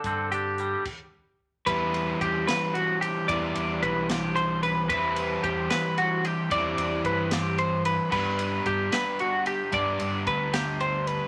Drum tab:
CC |---x--|------|------|------|
RD |------|xxxxxx|xxxxxx|xxxxxx|
HH |xxx---|------|------|------|
SD |------|---o--|---o--|---o--|
BD |o--o--|o-o---|o-o---|o-o---|

CC |------|x-----|------|
RD |xxxxxx|-xxxxx|xxxxxx|
HH |------|------|------|
SD |---o--|---o--|---o--|
BD |o-o---|o-o---|o-o---|